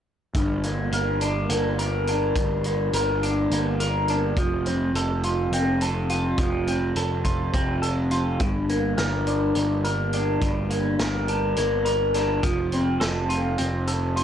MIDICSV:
0, 0, Header, 1, 4, 480
1, 0, Start_track
1, 0, Key_signature, -2, "minor"
1, 0, Tempo, 575816
1, 291, Time_signature, 7, 3, 24, 8
1, 11868, End_track
2, 0, Start_track
2, 0, Title_t, "Clean electric guitar"
2, 0, Program_c, 0, 27
2, 305, Note_on_c, 0, 43, 63
2, 540, Note_on_c, 0, 58, 65
2, 780, Note_on_c, 0, 70, 76
2, 1015, Note_on_c, 0, 62, 66
2, 1236, Note_off_c, 0, 58, 0
2, 1246, Note_on_c, 0, 58, 61
2, 1481, Note_off_c, 0, 70, 0
2, 1491, Note_on_c, 0, 70, 72
2, 1496, Note_off_c, 0, 43, 0
2, 1729, Note_off_c, 0, 62, 0
2, 1739, Note_on_c, 0, 62, 63
2, 1979, Note_on_c, 0, 43, 60
2, 2207, Note_off_c, 0, 58, 0
2, 2217, Note_on_c, 0, 58, 64
2, 2444, Note_off_c, 0, 70, 0
2, 2454, Note_on_c, 0, 70, 74
2, 2683, Note_off_c, 0, 62, 0
2, 2693, Note_on_c, 0, 62, 63
2, 2930, Note_off_c, 0, 58, 0
2, 2940, Note_on_c, 0, 58, 63
2, 3159, Note_off_c, 0, 70, 0
2, 3169, Note_on_c, 0, 70, 66
2, 3172, Note_off_c, 0, 43, 0
2, 3407, Note_off_c, 0, 62, 0
2, 3417, Note_on_c, 0, 62, 65
2, 3647, Note_off_c, 0, 70, 0
2, 3651, Note_off_c, 0, 62, 0
2, 3653, Note_off_c, 0, 58, 0
2, 3653, Note_on_c, 0, 53, 65
2, 3892, Note_on_c, 0, 60, 71
2, 4133, Note_on_c, 0, 69, 74
2, 4369, Note_on_c, 0, 65, 57
2, 4602, Note_off_c, 0, 60, 0
2, 4612, Note_on_c, 0, 60, 62
2, 4840, Note_off_c, 0, 69, 0
2, 4849, Note_off_c, 0, 53, 0
2, 4850, Note_on_c, 0, 69, 70
2, 5074, Note_off_c, 0, 65, 0
2, 5084, Note_on_c, 0, 65, 65
2, 5332, Note_on_c, 0, 53, 63
2, 5559, Note_off_c, 0, 60, 0
2, 5569, Note_on_c, 0, 60, 60
2, 5798, Note_off_c, 0, 69, 0
2, 5808, Note_on_c, 0, 69, 70
2, 6032, Note_off_c, 0, 65, 0
2, 6042, Note_on_c, 0, 65, 64
2, 6274, Note_off_c, 0, 60, 0
2, 6284, Note_on_c, 0, 60, 68
2, 6507, Note_off_c, 0, 69, 0
2, 6517, Note_on_c, 0, 69, 68
2, 6529, Note_off_c, 0, 53, 0
2, 6751, Note_off_c, 0, 65, 0
2, 6761, Note_on_c, 0, 65, 63
2, 7002, Note_off_c, 0, 69, 0
2, 7004, Note_off_c, 0, 65, 0
2, 7005, Note_off_c, 0, 60, 0
2, 7011, Note_on_c, 0, 43, 64
2, 7250, Note_on_c, 0, 58, 66
2, 7482, Note_on_c, 0, 70, 72
2, 7731, Note_on_c, 0, 62, 64
2, 7966, Note_off_c, 0, 58, 0
2, 7976, Note_on_c, 0, 58, 62
2, 8196, Note_off_c, 0, 70, 0
2, 8206, Note_on_c, 0, 70, 66
2, 8209, Note_off_c, 0, 43, 0
2, 8441, Note_off_c, 0, 62, 0
2, 8451, Note_on_c, 0, 62, 64
2, 8687, Note_on_c, 0, 43, 64
2, 8912, Note_off_c, 0, 58, 0
2, 8922, Note_on_c, 0, 58, 65
2, 9157, Note_off_c, 0, 70, 0
2, 9167, Note_on_c, 0, 70, 70
2, 9399, Note_off_c, 0, 62, 0
2, 9409, Note_on_c, 0, 62, 67
2, 9638, Note_off_c, 0, 58, 0
2, 9648, Note_on_c, 0, 58, 68
2, 9868, Note_off_c, 0, 70, 0
2, 9878, Note_on_c, 0, 70, 75
2, 9888, Note_off_c, 0, 43, 0
2, 10116, Note_off_c, 0, 62, 0
2, 10126, Note_on_c, 0, 62, 67
2, 10363, Note_off_c, 0, 70, 0
2, 10363, Note_on_c, 0, 53, 74
2, 10367, Note_off_c, 0, 62, 0
2, 10368, Note_off_c, 0, 58, 0
2, 10616, Note_on_c, 0, 60, 70
2, 10838, Note_on_c, 0, 69, 79
2, 11081, Note_on_c, 0, 65, 63
2, 11316, Note_off_c, 0, 60, 0
2, 11320, Note_on_c, 0, 60, 67
2, 11565, Note_off_c, 0, 69, 0
2, 11568, Note_on_c, 0, 69, 69
2, 11795, Note_off_c, 0, 65, 0
2, 11805, Note_on_c, 0, 65, 70
2, 11868, Note_off_c, 0, 53, 0
2, 11868, Note_off_c, 0, 60, 0
2, 11868, Note_off_c, 0, 65, 0
2, 11868, Note_off_c, 0, 69, 0
2, 11868, End_track
3, 0, Start_track
3, 0, Title_t, "Picked electric bass"
3, 0, Program_c, 1, 34
3, 288, Note_on_c, 1, 31, 80
3, 735, Note_off_c, 1, 31, 0
3, 761, Note_on_c, 1, 31, 75
3, 1211, Note_off_c, 1, 31, 0
3, 1244, Note_on_c, 1, 31, 79
3, 1932, Note_off_c, 1, 31, 0
3, 1964, Note_on_c, 1, 31, 79
3, 2412, Note_off_c, 1, 31, 0
3, 2436, Note_on_c, 1, 31, 76
3, 2888, Note_off_c, 1, 31, 0
3, 2919, Note_on_c, 1, 31, 72
3, 3609, Note_off_c, 1, 31, 0
3, 3638, Note_on_c, 1, 29, 87
3, 4088, Note_off_c, 1, 29, 0
3, 4112, Note_on_c, 1, 29, 81
3, 4565, Note_off_c, 1, 29, 0
3, 4585, Note_on_c, 1, 29, 70
3, 5282, Note_off_c, 1, 29, 0
3, 5317, Note_on_c, 1, 29, 78
3, 5768, Note_off_c, 1, 29, 0
3, 5798, Note_on_c, 1, 29, 89
3, 6249, Note_off_c, 1, 29, 0
3, 6283, Note_on_c, 1, 29, 69
3, 6972, Note_off_c, 1, 29, 0
3, 7004, Note_on_c, 1, 31, 85
3, 7452, Note_off_c, 1, 31, 0
3, 7486, Note_on_c, 1, 31, 81
3, 7933, Note_off_c, 1, 31, 0
3, 7966, Note_on_c, 1, 31, 64
3, 8654, Note_off_c, 1, 31, 0
3, 8681, Note_on_c, 1, 31, 94
3, 9131, Note_off_c, 1, 31, 0
3, 9166, Note_on_c, 1, 31, 92
3, 9614, Note_off_c, 1, 31, 0
3, 9651, Note_on_c, 1, 31, 77
3, 10337, Note_off_c, 1, 31, 0
3, 10363, Note_on_c, 1, 29, 89
3, 10813, Note_off_c, 1, 29, 0
3, 10856, Note_on_c, 1, 29, 81
3, 11299, Note_off_c, 1, 29, 0
3, 11337, Note_on_c, 1, 29, 71
3, 11868, Note_off_c, 1, 29, 0
3, 11868, End_track
4, 0, Start_track
4, 0, Title_t, "Drums"
4, 288, Note_on_c, 9, 42, 67
4, 289, Note_on_c, 9, 36, 93
4, 372, Note_off_c, 9, 42, 0
4, 373, Note_off_c, 9, 36, 0
4, 529, Note_on_c, 9, 42, 55
4, 613, Note_off_c, 9, 42, 0
4, 770, Note_on_c, 9, 42, 73
4, 854, Note_off_c, 9, 42, 0
4, 1008, Note_on_c, 9, 42, 63
4, 1091, Note_off_c, 9, 42, 0
4, 1247, Note_on_c, 9, 42, 85
4, 1330, Note_off_c, 9, 42, 0
4, 1491, Note_on_c, 9, 42, 53
4, 1574, Note_off_c, 9, 42, 0
4, 1728, Note_on_c, 9, 42, 48
4, 1811, Note_off_c, 9, 42, 0
4, 1964, Note_on_c, 9, 36, 92
4, 1964, Note_on_c, 9, 42, 72
4, 2047, Note_off_c, 9, 36, 0
4, 2047, Note_off_c, 9, 42, 0
4, 2202, Note_on_c, 9, 42, 50
4, 2285, Note_off_c, 9, 42, 0
4, 2445, Note_on_c, 9, 42, 82
4, 2528, Note_off_c, 9, 42, 0
4, 2692, Note_on_c, 9, 42, 54
4, 2775, Note_off_c, 9, 42, 0
4, 2929, Note_on_c, 9, 42, 66
4, 3012, Note_off_c, 9, 42, 0
4, 3168, Note_on_c, 9, 42, 60
4, 3252, Note_off_c, 9, 42, 0
4, 3402, Note_on_c, 9, 42, 47
4, 3485, Note_off_c, 9, 42, 0
4, 3640, Note_on_c, 9, 36, 104
4, 3644, Note_on_c, 9, 42, 68
4, 3724, Note_off_c, 9, 36, 0
4, 3727, Note_off_c, 9, 42, 0
4, 3883, Note_on_c, 9, 42, 52
4, 3966, Note_off_c, 9, 42, 0
4, 4128, Note_on_c, 9, 42, 73
4, 4211, Note_off_c, 9, 42, 0
4, 4363, Note_on_c, 9, 42, 53
4, 4446, Note_off_c, 9, 42, 0
4, 4606, Note_on_c, 9, 42, 79
4, 4689, Note_off_c, 9, 42, 0
4, 4842, Note_on_c, 9, 42, 61
4, 4925, Note_off_c, 9, 42, 0
4, 5081, Note_on_c, 9, 42, 46
4, 5164, Note_off_c, 9, 42, 0
4, 5316, Note_on_c, 9, 42, 68
4, 5318, Note_on_c, 9, 36, 104
4, 5399, Note_off_c, 9, 42, 0
4, 5402, Note_off_c, 9, 36, 0
4, 5563, Note_on_c, 9, 42, 56
4, 5646, Note_off_c, 9, 42, 0
4, 5800, Note_on_c, 9, 42, 76
4, 5883, Note_off_c, 9, 42, 0
4, 6039, Note_on_c, 9, 42, 57
4, 6041, Note_on_c, 9, 36, 67
4, 6123, Note_off_c, 9, 42, 0
4, 6124, Note_off_c, 9, 36, 0
4, 6282, Note_on_c, 9, 36, 101
4, 6283, Note_on_c, 9, 42, 80
4, 6365, Note_off_c, 9, 36, 0
4, 6367, Note_off_c, 9, 42, 0
4, 6525, Note_on_c, 9, 42, 58
4, 6608, Note_off_c, 9, 42, 0
4, 6758, Note_on_c, 9, 42, 46
4, 6842, Note_off_c, 9, 42, 0
4, 6999, Note_on_c, 9, 42, 69
4, 7003, Note_on_c, 9, 36, 99
4, 7083, Note_off_c, 9, 42, 0
4, 7086, Note_off_c, 9, 36, 0
4, 7247, Note_on_c, 9, 42, 49
4, 7330, Note_off_c, 9, 42, 0
4, 7483, Note_on_c, 9, 42, 81
4, 7484, Note_on_c, 9, 38, 99
4, 7567, Note_off_c, 9, 42, 0
4, 7568, Note_off_c, 9, 38, 0
4, 7725, Note_on_c, 9, 42, 52
4, 7808, Note_off_c, 9, 42, 0
4, 7961, Note_on_c, 9, 42, 69
4, 8044, Note_off_c, 9, 42, 0
4, 8207, Note_on_c, 9, 42, 53
4, 8290, Note_off_c, 9, 42, 0
4, 8442, Note_on_c, 9, 42, 49
4, 8526, Note_off_c, 9, 42, 0
4, 8683, Note_on_c, 9, 36, 96
4, 8683, Note_on_c, 9, 42, 75
4, 8766, Note_off_c, 9, 36, 0
4, 8766, Note_off_c, 9, 42, 0
4, 8923, Note_on_c, 9, 42, 50
4, 9007, Note_off_c, 9, 42, 0
4, 9163, Note_on_c, 9, 42, 82
4, 9164, Note_on_c, 9, 38, 103
4, 9247, Note_off_c, 9, 38, 0
4, 9247, Note_off_c, 9, 42, 0
4, 9403, Note_on_c, 9, 42, 61
4, 9487, Note_off_c, 9, 42, 0
4, 9640, Note_on_c, 9, 42, 76
4, 9724, Note_off_c, 9, 42, 0
4, 9882, Note_on_c, 9, 42, 62
4, 9965, Note_off_c, 9, 42, 0
4, 10121, Note_on_c, 9, 42, 55
4, 10122, Note_on_c, 9, 38, 26
4, 10205, Note_off_c, 9, 38, 0
4, 10205, Note_off_c, 9, 42, 0
4, 10362, Note_on_c, 9, 42, 85
4, 10364, Note_on_c, 9, 36, 104
4, 10446, Note_off_c, 9, 42, 0
4, 10447, Note_off_c, 9, 36, 0
4, 10604, Note_on_c, 9, 42, 48
4, 10687, Note_off_c, 9, 42, 0
4, 10844, Note_on_c, 9, 38, 106
4, 10844, Note_on_c, 9, 42, 78
4, 10927, Note_off_c, 9, 42, 0
4, 10928, Note_off_c, 9, 38, 0
4, 11085, Note_on_c, 9, 42, 59
4, 11168, Note_off_c, 9, 42, 0
4, 11320, Note_on_c, 9, 42, 75
4, 11403, Note_off_c, 9, 42, 0
4, 11565, Note_on_c, 9, 42, 57
4, 11648, Note_off_c, 9, 42, 0
4, 11810, Note_on_c, 9, 42, 47
4, 11868, Note_off_c, 9, 42, 0
4, 11868, End_track
0, 0, End_of_file